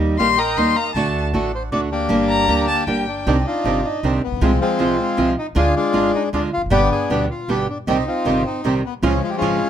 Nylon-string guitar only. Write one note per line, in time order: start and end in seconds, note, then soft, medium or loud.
0.00 0.18 D#3 medium
0.00 0.18 G3 medium
0.00 0.19 A#3 medium
0.00 0.19 D#4 medium
0.00 0.19 G4 medium
0.19 0.36 D#3 medium
0.19 0.36 G3 medium
0.19 0.36 A#3 medium
0.19 0.36 D#4 medium
0.19 0.37 G4 medium
0.57 0.74 D#3 medium
0.57 0.74 G3 medium
0.57 0.74 A#3 medium
0.57 0.75 D#4 medium
0.57 0.75 G4 medium
0.95 1.32 D3 medium
0.95 1.33 A3 medium
0.95 1.33 D4 medium
0.95 1.33 F#4 medium
1.33 1.50 D3 medium
1.33 1.50 A3 medium
1.33 1.50 D4 medium
1.33 1.51 F#4 medium
1.72 1.89 D3 medium
1.72 1.89 A3 medium
1.72 1.89 D4 medium
1.72 1.89 F#4 medium
2.09 2.47 D3 medium
2.09 2.47 G3 medium
2.09 2.47 A#3 medium
2.09 2.48 D4 medium
2.09 2.48 G4 medium
2.48 2.65 D3 medium
2.48 2.65 G3 medium
2.48 2.66 A#3 medium
2.48 2.66 D4 medium
2.48 2.66 G4 medium
2.87 3.05 D3 soft
2.87 3.05 G3 medium
2.87 3.05 A#3 medium
2.87 3.05 D4 soft
2.87 3.05 G4 medium
3.27 3.36 C3 medium
3.27 3.36 D#3 medium
3.27 3.36 G3 medium
3.27 3.36 D4 medium
3.27 3.36 G4 medium
3.64 3.82 C3 medium
3.64 3.82 D#3 medium
3.64 3.82 G3 medium
3.64 3.82 D4 medium
3.64 3.82 G4 medium
4.03 4.20 C3 medium
4.03 4.20 D#3 medium
4.03 4.21 G3 medium
4.03 4.21 D4 medium
4.03 4.21 G4 medium
4.41 4.50 C3 medium
4.41 4.50 F3 medium
4.41 4.51 G#3 medium
4.41 4.51 C4 medium
4.41 4.51 F4 medium
4.79 4.96 C3 medium
4.79 4.96 F3 medium
4.79 4.96 G#3 medium
4.79 4.97 C4 medium
4.79 4.97 F4 medium
5.17 5.34 C3 medium
5.17 5.35 F3 medium
5.17 5.35 G#3 medium
5.17 5.35 C4 medium
5.17 5.35 F4 medium
5.55 5.64 D3 medium
5.55 5.65 G#3 medium
5.55 5.65 D4 medium
5.55 5.65 F4 medium
5.93 6.11 D3 medium
5.93 6.11 G#3 medium
5.93 6.11 D4 medium
5.93 6.11 F4 medium
6.33 6.50 D3 medium
6.33 6.50 G#3 medium
6.33 6.50 D4 medium
6.33 6.50 F4 medium
6.70 6.80 B2 medium
6.70 6.80 D3 medium
6.70 6.80 G3 medium
6.70 6.80 B3 medium
6.70 6.80 G4 medium
7.10 7.27 B2 medium
7.10 7.27 D3 medium
7.10 7.27 G3 medium
7.10 7.27 B3 medium
7.10 7.28 G4 medium
7.48 7.66 B2 medium
7.48 7.66 D3 medium
7.48 7.66 G3 medium
7.48 7.66 B3 medium
7.48 7.66 G4 medium
7.87 7.97 C3 medium
7.87 7.97 D#3 medium
7.87 7.97 G3 medium
7.87 7.97 C4 medium
7.87 7.97 G4 medium
8.25 8.43 C3 medium
8.25 8.43 D#3 medium
8.25 8.43 G3 medium
8.25 8.43 C4 medium
8.25 8.43 G4 medium
8.64 8.81 C3 medium
8.64 8.82 D#3 medium
8.64 8.82 G3 medium
8.64 8.82 C4 medium
8.64 8.82 G4 medium
9.03 9.12 C#3 medium
9.03 9.12 F3 medium
9.03 9.12 G#3 medium
9.03 9.12 C#4 medium
9.03 9.12 F4 loud
9.41 9.58 C#3 medium
9.41 9.58 F3 medium
9.41 9.59 G#3 medium
9.41 9.59 C#4 medium
9.41 9.59 F4 medium